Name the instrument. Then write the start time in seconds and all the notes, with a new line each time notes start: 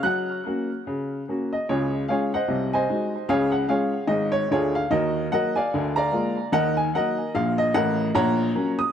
upright piano
0.03 F#3 F#5 F#6
0.46 A#3 C#4 F#4
0.87 C#3
1.29 A#3 C#4 F#4
1.53 D#5
1.69 C#2 C#3 F4 G#4 C#5
2.08 G#3 C#4 F4 G#4 C#5 F5
2.34 C5 D#5 F#5
2.48 C2 C3
2.73 C5 D#5 G#5
2.89 G#3 D#4 F#4
3.29 C#2 C#3 G#4 C#5 F5
3.52 F#5
3.68 G#3 C#4 F4 G#4 C#5 F5
4.07 G#1 G#2 D#5
4.32 C#5
4.51 D2 D3 F4 G#4 C#5
4.75 F5
4.90 D#2 D#3 F#4 A#4 D#5
5.32 F#3 A#3 F#4 A#4 D#5 F#5
5.56 D5 F5 G#5
5.74 D2 D3
5.96 D5 F5 A#5
6.12 G#3 A#3 F4
6.52 D#2 D#3 A#4 D#5 F#5
6.77 G#5
6.95 F#3 A#3 D#4 A#4 D#5 F#5
7.35 A#1 A#2 F5
7.58 D#5
7.74 A1 A2 A#4 D#5 F#5
8.15 A#1 A#2 C#5 F#5 A#5
8.55 F#3 A#3 C#4
8.79 D#6